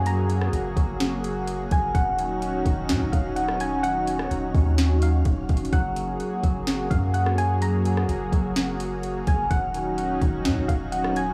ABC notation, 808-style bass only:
X:1
M:4/4
L:1/16
Q:1/4=127
K:Ebm
V:1 name="808-style bass" clef=bass
G,,4 G,,,2 G,,,8 G,,,2 | E,,,6 E,,,2 B,, E,,, E,,,6- | E,,,4 E,,,2 E,,6 E,,,2 E,,,2 | G,,,4 z2 G,,,4 G,,6- |
G,,4 G,,,2 G,,,8 G,,,2 | E,,,6 E,,,2 B,, E,,, E,,,6 |]